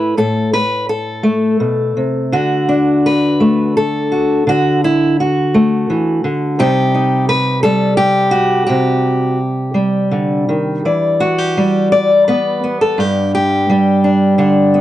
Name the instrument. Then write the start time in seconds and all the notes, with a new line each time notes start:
steel-string acoustic guitar
Already playing: A2 A3 E4 B4
0.17 A2 A4
0.53 B4
0.89 A4
1.23 A3
1.60 B2
1.97 C3
2.32 D3 F#4
2.69 D4
3.06 B4
3.40 A3
3.77 A4
4.12 F#4
4.47 D3 F#4
4.84 E4
5.20 F#4
5.54 A3
5.90 E3
6.24 D3
6.59 C3 G3 D#4 G4
6.94 D#4
7.29 B4
7.63 G3 A4
7.97 G4
8.31 F#4
8.67 C3 G4
9.74 G3
10.11 D3
10.49 D#3
10.85 E3 D5
11.20 F#4
11.38 G4
11.57 G3
11.92 D5
12.28 B3 B4
12.64 B3
12.81 A4
12.98 G2 G4
13.35 G4
13.70 G3
14.04 D4
14.38 D3 D4
14.74 B3